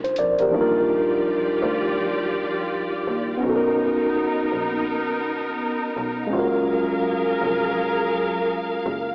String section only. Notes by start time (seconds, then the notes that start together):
0.53 F3 F4 G4 D5
3.43 B3 D#4 A#4
6.32 F#3 G#4 A#4 F5